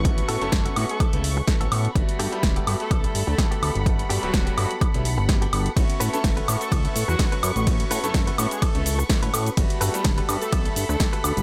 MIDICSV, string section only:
0, 0, Header, 1, 2, 480
1, 0, Start_track
1, 0, Tempo, 476190
1, 52, Time_signature, 4, 2, 24, 8
1, 11517, End_track
2, 0, Start_track
2, 0, Title_t, "String section"
2, 0, Program_c, 0, 48
2, 0, Note_on_c, 0, 71, 84
2, 0, Note_on_c, 0, 78, 76
2, 0, Note_on_c, 0, 85, 92
2, 1932, Note_off_c, 0, 78, 0
2, 1933, Note_off_c, 0, 71, 0
2, 1933, Note_off_c, 0, 85, 0
2, 1973, Note_on_c, 0, 83, 94
2, 1974, Note_on_c, 0, 69, 84
2, 1974, Note_on_c, 0, 78, 77
2, 5774, Note_off_c, 0, 69, 0
2, 5774, Note_off_c, 0, 83, 0
2, 5809, Note_on_c, 0, 71, 84
2, 5811, Note_on_c, 0, 85, 90
2, 9612, Note_off_c, 0, 71, 0
2, 9613, Note_off_c, 0, 78, 0
2, 9613, Note_off_c, 0, 85, 0
2, 9652, Note_on_c, 0, 78, 78
2, 9653, Note_on_c, 0, 69, 84
2, 9653, Note_on_c, 0, 83, 91
2, 11517, Note_off_c, 0, 69, 0
2, 11517, Note_off_c, 0, 78, 0
2, 11517, Note_off_c, 0, 83, 0
2, 11517, End_track
0, 0, End_of_file